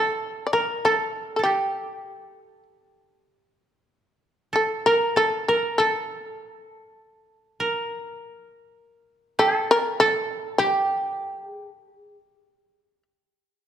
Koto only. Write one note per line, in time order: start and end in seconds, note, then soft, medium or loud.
0.00 1.09 G4 medium
0.00 0.59 A4 medium
0.53 0.91 A#4 medium
0.85 1.39 A4 medium
1.39 3.29 A4 soft
1.45 3.49 G4 medium
4.53 4.92 A4 medium
4.86 5.22 A#4 medium
5.16 5.55 A4 medium
5.49 5.86 A#4 medium
5.80 7.66 A4 medium
7.60 9.45 A#4 medium
9.39 10.00 A4 loud
10.01 11.91 A4 medium
10.59 11.45 G4 medium
11.45 11.69 G#4 medium
11.69 11.94 G4 medium
11.94 12.17 G#4 medium
12.17 13.03 G4 medium